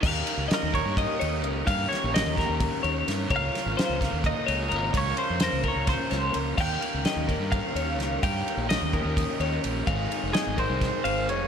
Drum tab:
CC |x------|-------|-------|-------|
RD |-xxxxxx|xxxxxxx|xxxxxxx|xxxxxxx|
SD |--o----|-ooo--o|-ooo---|--o-oo-|
BD |o--oo--|o--oo--|o--oo--|o--oo--|

CC |x------|-------|-------|
RD |-xxxxxx|xxxxxxx|xxxxxxx|
SD |--o---o|--o----|--o-o--|
BD |o--oo--|o--oo--|o--oo--|